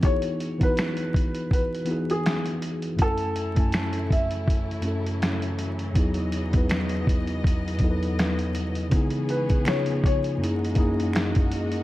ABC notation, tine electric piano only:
X:1
M:4/4
L:1/16
Q:"Swing 16ths" 1/4=81
K:C#m
V:1 name="Tine electric piano"
[E,B,DEFG]3 [E,B,DEFB]6 z [E,B,DEFG]4- [E,B,DEFG] z | [F,,A,CEg]3 [F,,A,CEg]6 z [F,,A,CEA]4- [F,,A,CEA] z | [E,,F,B,DEG]3 [E,,F,B,DEB]6 z [E,,F,B,DEAB]4- [E,,F,B,DEAB] z | [C,B,DEG]4 [C,B,D^EG]4 [F,,^A,CD=EG]2 [F,,A,CDEG]4- [F,,A,CDEG] z |]